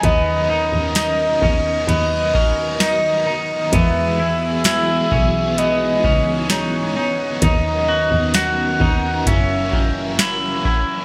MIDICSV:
0, 0, Header, 1, 7, 480
1, 0, Start_track
1, 0, Tempo, 923077
1, 19, Time_signature, 4, 2, 24, 8
1, 5745, End_track
2, 0, Start_track
2, 0, Title_t, "Soft synth lead"
2, 0, Program_c, 0, 80
2, 26, Note_on_c, 0, 75, 114
2, 1460, Note_off_c, 0, 75, 0
2, 1463, Note_on_c, 0, 75, 93
2, 1945, Note_on_c, 0, 76, 106
2, 1952, Note_off_c, 0, 75, 0
2, 2422, Note_off_c, 0, 76, 0
2, 2425, Note_on_c, 0, 76, 116
2, 2903, Note_on_c, 0, 75, 105
2, 2910, Note_off_c, 0, 76, 0
2, 3384, Note_on_c, 0, 73, 94
2, 3391, Note_off_c, 0, 75, 0
2, 3859, Note_off_c, 0, 73, 0
2, 3862, Note_on_c, 0, 75, 100
2, 4341, Note_on_c, 0, 78, 106
2, 4349, Note_off_c, 0, 75, 0
2, 4821, Note_on_c, 0, 76, 92
2, 4829, Note_off_c, 0, 78, 0
2, 5300, Note_off_c, 0, 76, 0
2, 5745, End_track
3, 0, Start_track
3, 0, Title_t, "Clean electric guitar"
3, 0, Program_c, 1, 27
3, 740, Note_on_c, 1, 61, 77
3, 978, Note_off_c, 1, 61, 0
3, 1221, Note_on_c, 1, 61, 76
3, 1457, Note_off_c, 1, 61, 0
3, 2182, Note_on_c, 1, 64, 73
3, 2417, Note_off_c, 1, 64, 0
3, 2423, Note_on_c, 1, 64, 82
3, 2661, Note_off_c, 1, 64, 0
3, 2662, Note_on_c, 1, 61, 69
3, 2900, Note_off_c, 1, 61, 0
3, 3143, Note_on_c, 1, 61, 76
3, 3381, Note_off_c, 1, 61, 0
3, 4100, Note_on_c, 1, 66, 71
3, 4334, Note_off_c, 1, 66, 0
3, 4341, Note_on_c, 1, 66, 84
3, 4580, Note_off_c, 1, 66, 0
3, 5059, Note_on_c, 1, 51, 75
3, 5299, Note_off_c, 1, 51, 0
3, 5300, Note_on_c, 1, 64, 79
3, 5533, Note_off_c, 1, 64, 0
3, 5540, Note_on_c, 1, 64, 68
3, 5745, Note_off_c, 1, 64, 0
3, 5745, End_track
4, 0, Start_track
4, 0, Title_t, "String machine"
4, 0, Program_c, 2, 50
4, 0, Note_on_c, 2, 59, 84
4, 17, Note_on_c, 2, 70, 96
4, 18, Note_on_c, 2, 51, 89
4, 18, Note_on_c, 2, 61, 76
4, 969, Note_off_c, 2, 61, 0
4, 977, Note_on_c, 2, 66, 70
4, 1917, Note_off_c, 2, 59, 0
4, 1918, Note_off_c, 2, 70, 0
4, 1919, Note_off_c, 2, 51, 0
4, 1935, Note_on_c, 2, 52, 86
4, 1935, Note_on_c, 2, 59, 81
4, 1936, Note_on_c, 2, 68, 93
4, 3837, Note_off_c, 2, 52, 0
4, 3837, Note_off_c, 2, 66, 0
4, 3838, Note_off_c, 2, 68, 0
4, 3859, Note_on_c, 2, 70, 101
4, 3860, Note_on_c, 2, 51, 87
4, 3861, Note_on_c, 2, 61, 73
4, 4796, Note_off_c, 2, 59, 0
4, 4809, Note_off_c, 2, 51, 0
4, 4819, Note_on_c, 2, 54, 77
4, 4819, Note_on_c, 2, 76, 76
4, 5745, Note_off_c, 2, 54, 0
4, 5745, Note_off_c, 2, 61, 0
4, 5745, Note_off_c, 2, 70, 0
4, 5745, Note_off_c, 2, 76, 0
4, 5745, End_track
5, 0, Start_track
5, 0, Title_t, "Overdriven electric guitar"
5, 0, Program_c, 3, 29
5, 18, Note_on_c, 3, 51, 67
5, 23, Note_on_c, 3, 54, 71
5, 26, Note_on_c, 3, 59, 78
5, 28, Note_on_c, 3, 63, 77
5, 32, Note_on_c, 3, 70, 75
5, 249, Note_off_c, 3, 70, 0
5, 255, Note_on_c, 3, 70, 54
5, 258, Note_off_c, 3, 51, 0
5, 259, Note_off_c, 3, 63, 0
5, 261, Note_off_c, 3, 54, 0
5, 262, Note_off_c, 3, 59, 0
5, 265, Note_on_c, 3, 63, 49
5, 275, Note_on_c, 3, 59, 44
5, 496, Note_on_c, 3, 51, 82
5, 497, Note_off_c, 3, 70, 0
5, 498, Note_off_c, 3, 59, 0
5, 501, Note_on_c, 3, 54, 78
5, 502, Note_off_c, 3, 63, 0
5, 504, Note_on_c, 3, 59, 78
5, 507, Note_on_c, 3, 63, 84
5, 510, Note_on_c, 3, 70, 87
5, 728, Note_off_c, 3, 70, 0
5, 734, Note_on_c, 3, 70, 62
5, 737, Note_off_c, 3, 51, 0
5, 740, Note_off_c, 3, 54, 0
5, 740, Note_off_c, 3, 63, 0
5, 741, Note_off_c, 3, 59, 0
5, 746, Note_on_c, 3, 63, 63
5, 754, Note_on_c, 3, 59, 50
5, 974, Note_on_c, 3, 54, 75
5, 976, Note_off_c, 3, 59, 0
5, 976, Note_off_c, 3, 70, 0
5, 982, Note_off_c, 3, 63, 0
5, 982, Note_on_c, 3, 59, 70
5, 989, Note_on_c, 3, 63, 66
5, 994, Note_on_c, 3, 70, 70
5, 1208, Note_off_c, 3, 70, 0
5, 1214, Note_on_c, 3, 70, 63
5, 1216, Note_off_c, 3, 54, 0
5, 1219, Note_off_c, 3, 63, 0
5, 1220, Note_off_c, 3, 59, 0
5, 1225, Note_on_c, 3, 63, 52
5, 1234, Note_on_c, 3, 59, 48
5, 1456, Note_off_c, 3, 70, 0
5, 1456, Note_on_c, 3, 51, 81
5, 1457, Note_off_c, 3, 59, 0
5, 1460, Note_on_c, 3, 54, 76
5, 1462, Note_off_c, 3, 63, 0
5, 1464, Note_on_c, 3, 59, 81
5, 1468, Note_on_c, 3, 63, 90
5, 1471, Note_on_c, 3, 70, 85
5, 1690, Note_off_c, 3, 70, 0
5, 1697, Note_off_c, 3, 51, 0
5, 1697, Note_on_c, 3, 70, 56
5, 1699, Note_off_c, 3, 54, 0
5, 1701, Note_off_c, 3, 59, 0
5, 1701, Note_off_c, 3, 63, 0
5, 1708, Note_on_c, 3, 63, 49
5, 1716, Note_on_c, 3, 59, 43
5, 1936, Note_on_c, 3, 52, 76
5, 1938, Note_off_c, 3, 59, 0
5, 1938, Note_off_c, 3, 70, 0
5, 1941, Note_on_c, 3, 56, 75
5, 1943, Note_off_c, 3, 63, 0
5, 1945, Note_on_c, 3, 59, 77
5, 1951, Note_on_c, 3, 68, 83
5, 2171, Note_off_c, 3, 68, 0
5, 2177, Note_off_c, 3, 52, 0
5, 2177, Note_on_c, 3, 68, 49
5, 2180, Note_off_c, 3, 56, 0
5, 2182, Note_off_c, 3, 59, 0
5, 2197, Note_on_c, 3, 59, 46
5, 2416, Note_on_c, 3, 52, 72
5, 2418, Note_off_c, 3, 68, 0
5, 2419, Note_off_c, 3, 59, 0
5, 2422, Note_on_c, 3, 56, 83
5, 2425, Note_on_c, 3, 59, 89
5, 2431, Note_on_c, 3, 68, 88
5, 2651, Note_off_c, 3, 68, 0
5, 2657, Note_off_c, 3, 52, 0
5, 2657, Note_on_c, 3, 68, 52
5, 2660, Note_off_c, 3, 56, 0
5, 2662, Note_off_c, 3, 59, 0
5, 2676, Note_on_c, 3, 59, 41
5, 2893, Note_on_c, 3, 56, 58
5, 2895, Note_off_c, 3, 59, 0
5, 2898, Note_off_c, 3, 68, 0
5, 2902, Note_on_c, 3, 59, 57
5, 2907, Note_on_c, 3, 63, 63
5, 2913, Note_on_c, 3, 68, 71
5, 3125, Note_off_c, 3, 68, 0
5, 3131, Note_on_c, 3, 68, 49
5, 3136, Note_off_c, 3, 56, 0
5, 3136, Note_off_c, 3, 63, 0
5, 3140, Note_off_c, 3, 59, 0
5, 3143, Note_on_c, 3, 63, 50
5, 3153, Note_on_c, 3, 59, 43
5, 3372, Note_on_c, 3, 52, 71
5, 3373, Note_off_c, 3, 59, 0
5, 3375, Note_off_c, 3, 68, 0
5, 3375, Note_on_c, 3, 56, 82
5, 3378, Note_off_c, 3, 63, 0
5, 3379, Note_on_c, 3, 59, 80
5, 3384, Note_on_c, 3, 63, 91
5, 3387, Note_on_c, 3, 68, 89
5, 3607, Note_off_c, 3, 68, 0
5, 3614, Note_on_c, 3, 68, 51
5, 3615, Note_off_c, 3, 52, 0
5, 3617, Note_off_c, 3, 56, 0
5, 3618, Note_off_c, 3, 63, 0
5, 3619, Note_off_c, 3, 59, 0
5, 3625, Note_on_c, 3, 63, 43
5, 3633, Note_on_c, 3, 59, 44
5, 3854, Note_off_c, 3, 59, 0
5, 3854, Note_on_c, 3, 51, 75
5, 3856, Note_off_c, 3, 68, 0
5, 3858, Note_off_c, 3, 63, 0
5, 3858, Note_on_c, 3, 54, 75
5, 3861, Note_on_c, 3, 59, 74
5, 3864, Note_on_c, 3, 63, 82
5, 3867, Note_on_c, 3, 70, 79
5, 4089, Note_off_c, 3, 70, 0
5, 4095, Note_on_c, 3, 70, 51
5, 4096, Note_off_c, 3, 51, 0
5, 4098, Note_off_c, 3, 54, 0
5, 4099, Note_off_c, 3, 63, 0
5, 4100, Note_off_c, 3, 59, 0
5, 4105, Note_on_c, 3, 63, 48
5, 4116, Note_on_c, 3, 59, 45
5, 4335, Note_on_c, 3, 51, 75
5, 4336, Note_off_c, 3, 59, 0
5, 4337, Note_off_c, 3, 70, 0
5, 4340, Note_off_c, 3, 63, 0
5, 4340, Note_on_c, 3, 54, 84
5, 4343, Note_on_c, 3, 59, 86
5, 4346, Note_on_c, 3, 63, 72
5, 4350, Note_on_c, 3, 70, 85
5, 4569, Note_off_c, 3, 70, 0
5, 4576, Note_on_c, 3, 70, 50
5, 4577, Note_off_c, 3, 51, 0
5, 4579, Note_off_c, 3, 54, 0
5, 4581, Note_off_c, 3, 59, 0
5, 4581, Note_off_c, 3, 63, 0
5, 4587, Note_on_c, 3, 63, 44
5, 4595, Note_on_c, 3, 59, 43
5, 4814, Note_on_c, 3, 52, 55
5, 4817, Note_off_c, 3, 70, 0
5, 4821, Note_off_c, 3, 59, 0
5, 4823, Note_off_c, 3, 63, 0
5, 4823, Note_on_c, 3, 58, 58
5, 4829, Note_on_c, 3, 61, 68
5, 4835, Note_on_c, 3, 66, 73
5, 5047, Note_off_c, 3, 66, 0
5, 5053, Note_off_c, 3, 61, 0
5, 5053, Note_on_c, 3, 66, 51
5, 5056, Note_off_c, 3, 52, 0
5, 5060, Note_on_c, 3, 61, 51
5, 5061, Note_off_c, 3, 58, 0
5, 5067, Note_on_c, 3, 58, 44
5, 5072, Note_on_c, 3, 52, 43
5, 5293, Note_off_c, 3, 52, 0
5, 5295, Note_on_c, 3, 42, 77
5, 5296, Note_off_c, 3, 58, 0
5, 5296, Note_off_c, 3, 66, 0
5, 5298, Note_on_c, 3, 49, 75
5, 5299, Note_off_c, 3, 61, 0
5, 5299, Note_on_c, 3, 52, 83
5, 5302, Note_on_c, 3, 58, 84
5, 5305, Note_on_c, 3, 61, 86
5, 5306, Note_on_c, 3, 66, 81
5, 5527, Note_off_c, 3, 66, 0
5, 5533, Note_on_c, 3, 66, 63
5, 5535, Note_off_c, 3, 61, 0
5, 5536, Note_off_c, 3, 42, 0
5, 5538, Note_off_c, 3, 49, 0
5, 5539, Note_off_c, 3, 52, 0
5, 5540, Note_off_c, 3, 58, 0
5, 5541, Note_on_c, 3, 61, 53
5, 5548, Note_on_c, 3, 58, 47
5, 5554, Note_on_c, 3, 52, 40
5, 5745, Note_off_c, 3, 52, 0
5, 5745, Note_off_c, 3, 58, 0
5, 5745, Note_off_c, 3, 61, 0
5, 5745, Note_off_c, 3, 66, 0
5, 5745, End_track
6, 0, Start_track
6, 0, Title_t, "Double bass"
6, 0, Program_c, 4, 43
6, 18, Note_on_c, 4, 39, 111
6, 360, Note_off_c, 4, 39, 0
6, 376, Note_on_c, 4, 39, 81
6, 719, Note_off_c, 4, 39, 0
6, 738, Note_on_c, 4, 39, 89
6, 966, Note_off_c, 4, 39, 0
6, 976, Note_on_c, 4, 39, 100
6, 1916, Note_off_c, 4, 39, 0
6, 1938, Note_on_c, 4, 40, 118
6, 2638, Note_off_c, 4, 40, 0
6, 2659, Note_on_c, 4, 35, 84
6, 3118, Note_off_c, 4, 35, 0
6, 3141, Note_on_c, 4, 37, 76
6, 3839, Note_off_c, 4, 37, 0
6, 3859, Note_on_c, 4, 39, 112
6, 4201, Note_off_c, 4, 39, 0
6, 4217, Note_on_c, 4, 39, 87
6, 4560, Note_off_c, 4, 39, 0
6, 4578, Note_on_c, 4, 39, 100
6, 4806, Note_off_c, 4, 39, 0
6, 4817, Note_on_c, 4, 30, 98
6, 5745, Note_off_c, 4, 30, 0
6, 5745, End_track
7, 0, Start_track
7, 0, Title_t, "Drums"
7, 18, Note_on_c, 9, 36, 95
7, 18, Note_on_c, 9, 42, 75
7, 70, Note_off_c, 9, 36, 0
7, 70, Note_off_c, 9, 42, 0
7, 495, Note_on_c, 9, 42, 70
7, 498, Note_on_c, 9, 38, 108
7, 498, Note_on_c, 9, 54, 68
7, 547, Note_off_c, 9, 42, 0
7, 550, Note_off_c, 9, 38, 0
7, 550, Note_off_c, 9, 54, 0
7, 739, Note_on_c, 9, 36, 94
7, 791, Note_off_c, 9, 36, 0
7, 981, Note_on_c, 9, 42, 66
7, 1033, Note_off_c, 9, 42, 0
7, 1220, Note_on_c, 9, 36, 97
7, 1272, Note_off_c, 9, 36, 0
7, 1457, Note_on_c, 9, 38, 110
7, 1457, Note_on_c, 9, 54, 58
7, 1460, Note_on_c, 9, 42, 58
7, 1509, Note_off_c, 9, 38, 0
7, 1509, Note_off_c, 9, 54, 0
7, 1512, Note_off_c, 9, 42, 0
7, 1938, Note_on_c, 9, 36, 93
7, 1938, Note_on_c, 9, 42, 74
7, 1990, Note_off_c, 9, 36, 0
7, 1990, Note_off_c, 9, 42, 0
7, 2415, Note_on_c, 9, 42, 68
7, 2418, Note_on_c, 9, 38, 109
7, 2418, Note_on_c, 9, 54, 70
7, 2467, Note_off_c, 9, 42, 0
7, 2470, Note_off_c, 9, 38, 0
7, 2470, Note_off_c, 9, 54, 0
7, 2660, Note_on_c, 9, 36, 86
7, 2712, Note_off_c, 9, 36, 0
7, 2902, Note_on_c, 9, 42, 64
7, 2954, Note_off_c, 9, 42, 0
7, 3141, Note_on_c, 9, 36, 96
7, 3193, Note_off_c, 9, 36, 0
7, 3378, Note_on_c, 9, 38, 117
7, 3378, Note_on_c, 9, 54, 55
7, 3381, Note_on_c, 9, 42, 66
7, 3430, Note_off_c, 9, 38, 0
7, 3430, Note_off_c, 9, 54, 0
7, 3433, Note_off_c, 9, 42, 0
7, 3858, Note_on_c, 9, 42, 81
7, 3859, Note_on_c, 9, 36, 103
7, 3910, Note_off_c, 9, 42, 0
7, 3911, Note_off_c, 9, 36, 0
7, 4336, Note_on_c, 9, 42, 72
7, 4339, Note_on_c, 9, 38, 107
7, 4339, Note_on_c, 9, 54, 65
7, 4388, Note_off_c, 9, 42, 0
7, 4391, Note_off_c, 9, 38, 0
7, 4391, Note_off_c, 9, 54, 0
7, 4579, Note_on_c, 9, 36, 93
7, 4631, Note_off_c, 9, 36, 0
7, 4817, Note_on_c, 9, 36, 96
7, 4819, Note_on_c, 9, 42, 72
7, 4869, Note_off_c, 9, 36, 0
7, 4871, Note_off_c, 9, 42, 0
7, 5059, Note_on_c, 9, 36, 93
7, 5111, Note_off_c, 9, 36, 0
7, 5298, Note_on_c, 9, 38, 110
7, 5298, Note_on_c, 9, 54, 57
7, 5301, Note_on_c, 9, 42, 59
7, 5350, Note_off_c, 9, 38, 0
7, 5350, Note_off_c, 9, 54, 0
7, 5353, Note_off_c, 9, 42, 0
7, 5538, Note_on_c, 9, 36, 96
7, 5590, Note_off_c, 9, 36, 0
7, 5745, End_track
0, 0, End_of_file